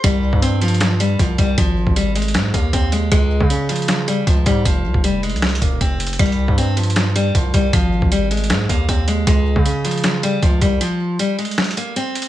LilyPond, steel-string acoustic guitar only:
\new Staff \with { instrumentName = "Steel-string acoustic guitar" } { \clef bass \time 4/4 \key c \phrygian \tempo 4 = 156 g4 c'8 f4 g8 f8 g8 | f4 g8 aes4 bes8 c'8 aes8 | aes4 des'8 f4 g8 f8 g8 | f4 g8 aes4 bes8 c'4 |
g4 c'8 f4 g8 f8 g8 | f4 g8 aes4 bes8 c'8 aes8 | aes4 des'8 f4 g8 f8 g8 | f4 g8 aes4 bes8 c'4 | }